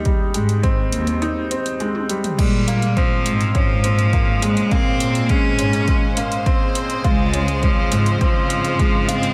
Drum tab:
CC |----------------|x---------------|----------------|----------------|
HH |x-xxx-xxx-xxx-xx|x-xxx-xxx-xxx-xx|x-xxx-xxx-xxx-xx|x-xxx-xxx-xxx-xx|
T1 |------------oo--|----------------|----------------|----------------|
T2 |---------------o|----------------|----------------|----------------|
BD |o---o-----------|o---o---o---o---|o---o---o---o---|o---o---o---o---|